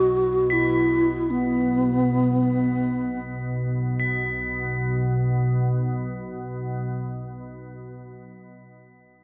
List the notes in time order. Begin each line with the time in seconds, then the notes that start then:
Already playing: B1 B2 F#4 A6
0.50 E4 B6
1.31 B3
4.00 B1 B2 B6